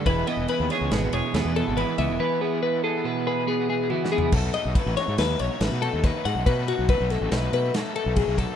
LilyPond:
<<
  \new Staff \with { instrumentName = "Clean electric guitar" } { \time 5/4 \key b \mixolydian \tempo 4 = 140 b'8 dis''8 b'8 cis''8 b'8 cis''8 b'8 a'8 b'8 e''8 | b'8 gis'8 b'8 a'8 b'8 b'8 gis'8 gis'8 fis'8 gis'8 | a'8 dis''8 b'8 cis''8 b'8 cis''8 b'8 a'8 b'8 fis''8 | b'8 fis'8 b'8 a'8 b'8 b'8 a'8 a'8 gis'8 a'8 | }
  \new Staff \with { instrumentName = "Clean electric guitar" } { \time 5/4 \key b \mixolydian << { r4. gis'4 gis'2~ gis'8 | r4. gis'4 gis'2~ gis'8 | r1 r4 | r1 r4 | } \\ { e8 b4. b,4 b4 e8 b8 | e8 b4. b,4 b4 e8 b8 | r1 r4 | r1 r4 | } >> }
  \new Staff \with { instrumentName = "Overdriven electric guitar" } { \time 5/4 \key b \mixolydian <e gis b e'>8 <gis b e'>8 <e gis b e'>8 <gis b e'>4. <e gis b e'>8 <gis b e'>8 <e gis b e'>8 <gis b e'>8 | <e gis b e'>8 <gis b e'>8 <e gis b e'>8 <gis b e'>4. <e gis b e'>8 <gis b e'>8 <e gis b e'>8 <gis b e'>8 | <b, fis a dis'>8 <fis a dis'>8 <b, fis a dis'>8 <fis a dis'>4. <b, fis a dis'>8 <fis a dis'>8 <b, fis a dis'>8 <fis a dis'>8 | <b, fis a dis'>8 <fis a dis'>8 <b, fis a dis'>8 <fis a dis'>4. <b, fis a dis'>8 <fis a dis'>8 <b, fis a dis'>8 <fis a dis'>8 | }
  \new Staff \with { instrumentName = "Fingered electric bass" } { \clef bass \time 5/4 \key b \mixolydian e,,8 r16 e,,16 r16 dis,16 r16 cis,16 gis,,8 e,,16 r16 dis,16 e,8 gis,,8 r16 cis,16 e,,16 | r1 r4 | b,,8 r16 b,,16 r16 a,,16 r16 gis,16 dis,8 b,,16 r16 a,,16 b,8 dis,8 r16 gis,16 b,,16 | b,8. b,,8 b,,8 a,,16 b,,8 b,8 r8. b,,8 b,,8 r16 | }
  \new DrumStaff \with { instrumentName = "Drums" } \drummode { \time 5/4 <bd cymr>8 cymr8 cymr8 <cymr sn>8 <cymr sn>8 cymr8 <cymr sn>8 cymr8 cymr8 cymr8 | r4 r4 r4 r4 \tuplet 3/2 { tommh8 sn8 tomfh8 } | <cymc bd>8 cymr8 <bd cymr>8 <cymr sn>8 <cymr sn>8 cymr8 <cymr sn>8 cymr8 <bd cymr sn>8 cymr8 | <bd cymr>8 cymr8 <bd cymr>8 <cymr sn>8 <cymr sn>8 cymr8 <cymr sn>8 cymr8 <bd cymr>8 <bd cymr>8 | }
>>